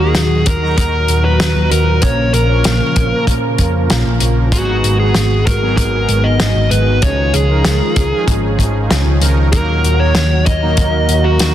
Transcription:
Already playing: D#2 A#2 D#3 F#3 F#4
0.00 F#3 A#3 D#4 G#4 A#4
0.15 D#2, snare, closed hi-hat
0.46 D#2 A#4, kick, closed hi-hat
0.62 F#3 D#4 A#5
0.78 D#2 A#4, kick, closed hi-hat
1.08 D#2, closed hi-hat
1.25 B4
1.40 D#2, snare, closed hi-hat
1.55 D#2
1.71 D#2 A#4, closed hi-hat
2.02 A#1 C#3 F3 A#3 C#4 F4 A#4 C#5, kick, closed hi-hat
2.34 A#1 A#4, closed hi-hat
2.49 F3 A#3 C#4 C#5
2.64 A#1, snare, closed hi-hat
2.96 A#1, kick, closed hi-hat
3.12 F3 A#3 C#4 A#4
3.27 A#2, kick, closed hi-hat
3.58 F2, kick, closed hi-hat
3.90 A#1, snare, closed hi-hat
4.06 A#1
4.20 A#1, closed hi-hat
4.52 D#3 F#3 G#3 B3 D#4 F#4 G#4, kick, closed hi-hat
4.84 G#1, closed hi-hat
4.99 F#3 B3 D#4 G#4
5.15 G#1, snare, closed hi-hat
5.46 G#1 A#4, kick, closed hi-hat
5.62 F#3 B3 D#4 G#4
5.77 G#1 A#4, kick, closed hi-hat
6.09 G#1, closed hi-hat
6.24 D#5
6.40 snare, closed hi-hat
6.55 G#1
6.71 G#1 B4, closed hi-hat
7.02 C#2 F3 C#4 D#4 F4 G#4 C#5, kick, closed hi-hat
7.34 C#2 G#4, closed hi-hat
7.49 F3 C#4 D#4 A#4
7.65 snare, closed hi-hat
7.96 C#2, kick, closed hi-hat
8.12 F3 C#4 D#4 G#4
8.28 G#1, kick, closed hi-hat
8.59 G#1, kick, closed hi-hat
8.90 C#2, snare, closed hi-hat
9.06 C#2
9.21 C#2 F3 C#4 D#4 A#4, closed hi-hat
9.52 D#2 A#2 F#3 A#3 D#4 F#4 A#4, kick, closed hi-hat
9.84 D#2, closed hi-hat
9.99 F#3 A#3 D#4 A#4 C#5
10.15 D#2, snare, closed hi-hat
10.46 D#2 D#5, kick, closed hi-hat
10.62 F#3 A#3 D#4 A#4
10.77 D#2, kick, closed hi-hat
11.09 D#2, closed hi-hat
11.25 F#4
11.39 D#2, snare, closed hi-hat

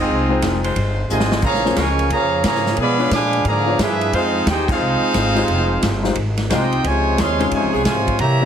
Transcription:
Already playing: G#3 C4 D#4
0.00 C4 F4 G#4 D#5
0.08 C2
0.29 G#3 D#4 F4 C5 G5
0.42 F1, kick, snare, hi-hat pedal, ride
0.64 G#3 D#4 F4 C5, ride
0.76 G1, kick, ride
1.10 G#1 C3 D#3 G#3 F4 C5 D#5 G#5, hi-hat pedal
1.20 snare
1.31 snare
1.42 A#1 C#3 F3 A#3 G#4 C#5 F5 A#5, kick, crash
1.54 snare
1.64 A#3 C#4 F4 G#4 C5, snare
1.75 C#2 F3 G#3 C#4 F4 A#4 F5 G#5 C#6, kick, snare, hi-hat pedal, ride
1.99 ride
2.10 F2 C#3 F3 A#3 G#4 C#5 F5 A#5, kick, ride
2.43 G#2 C#3 F3 A#3 G#4 C#5 F5 A#5, kick, snare, hi-hat pedal, ride
2.55 snare
2.66 snare
2.77 B2 F3 G#3 B3, kick, ride
2.81 G#4 D5 F5 B5
2.98 G#3 B3 D4 F4 G#4 B4 C#5
3.11 A#2 F3 G#3 D4 B4 F5 G#5 D6, kick, snare, hi-hat pedal, ride
3.33 ride
3.45 G#2 D3 F3 A#3 G#4 D5 F5 A#5, kick, ride
3.66 B3 D4 F4 G#4 C#5
3.78 G2 F3 G#3 D4 E4 F4 G4 G#4 B4 E5, kick, snare, hi-hat pedal, ride
4.01 ride
4.12 F2 G#3 C4 D#4 F4 G#4 C5 F5, kick, ride
4.46 D#2 D#4 G4 G#4 C5 G5, kick, snare, hi-hat pedal, ride
4.68 G#3 C4 F4 C5 F5, kick, crash
4.73 D#4 G#4
4.80 C2
5.01 muted upright bass stroke
5.14 G#1, kick, snare, hi-hat pedal, ride
5.35 G#3 D#4 F4 G4 C5, ride
5.48 F1, kick, ride
5.82 G1, kick, snare, hi-hat pedal, ride
6.03 G#3 D#4 F4 G4 C5, snare
6.15 G#1, kick, ride
6.37 snare, ride
6.50 C2 G#3 C4 D#4 F4 G4 C5 D#5 G5, kick, snare, hi-hat pedal, ride
6.72 ride
6.84 C#2 C3 F3 G#3 F4 C5 C#5 G#5, kick, ride
7.17 D#2 C3 F3 G#3 G#4 C#5 F5 C6, kick, snare, hi-hat pedal, ride
7.38 C#3 G#3 C#4 D#4 F4 G#4 C5, ride
7.51 F2 C3 F3 G#3 F4 C5 C#5 G#5, kick, ride
7.64 C#2
7.73 C2 G#3 F4 G#4
7.85 G#2 C3 F3 G#3 F4 C5 C#5 G#5, kick, snare, hi-hat pedal, ride
8.07 kick, ride
8.19 C3 E3 G3 A#3 G4 C#5 E5 A#5, kick, ride
8.42 A#3

